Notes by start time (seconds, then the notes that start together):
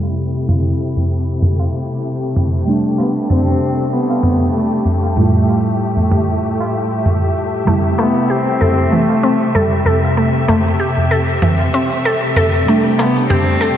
Already playing: C3 G3 A3 E4 G4
0.03 tabla na
0.48 mid tom, tabla na, shaker
0.80 shaker
0.97 tabla ge
1.11 shaker
1.28 shaker
1.42 mid tom
1.59 tabla na, tabla tin
1.74 tabla tin, shaker
1.91 shaker
2.05 shaker
2.36 mid tom, tabla tin, shaker
2.54 shaker
2.65 C3 G3 A3 D4, shaker
2.98 B3, tabla na, shaker
3.17 shaker
3.30 C4, mid tom, shaker
3.62 shaker
3.78 shaker
3.92 B3, shaker
4.09 tabla na, tabla tin
4.23 mid tom, shaker
4.41 tabla tin, shaker
4.55 A3, shaker
4.85 tabla ge, shaker
5.03 tabla na, shaker
5.16 A2 G3 A3 E4 F4 E5, mid tom, shaker
5.48 tabla na, shaker
5.66 shaker
5.80 shaker
5.97 tabla ge
6.12 mid tom, shaker
6.29 shaker
6.43 shaker
6.60 tabla na, tabla tin
6.74 tabla tin, shaker
6.92 shaker
7.06 mid tom, shaker
7.36 tabla tin, shaker
7.54 shaker
7.65 C3 G3 A3, mid tom, shaker
7.69 E4
7.98 A3 B3, tabla na, shaker
8.17 shaker
8.29 C4 G4, shaker
8.61 A4, mid tom, shaker
8.79 shaker
8.91 E3 A3, shaker
9.09 tabla na, tabla tin
9.23 C4, shaker
9.40 tabla tin, shaker
9.55 G3 A4, mid tom, shaker
9.86 A4, tabla ge, shaker
10.04 tabla na, shaker
10.17 A3, shaker
10.48 A3, mid tom, tabla na, shaker
10.67 shaker
10.80 G4, shaker
10.97 tabla ge
11.11 A4, shaker
11.29 shaker
11.42 E3, mid tom, shaker
11.60 tabla na, tabla tin
11.73 C4, tabla tin, shaker
11.91 shaker
12.05 A4, shaker
12.35 A4, mid tom, tabla tin, shaker
12.54 shaker
12.65 C3 G3 A3 D4 G4, shaker
12.98 A3 B3, tabla na, shaker
13.16 shaker
13.30 C4 G4, mid tom, shaker
13.61 A4, shaker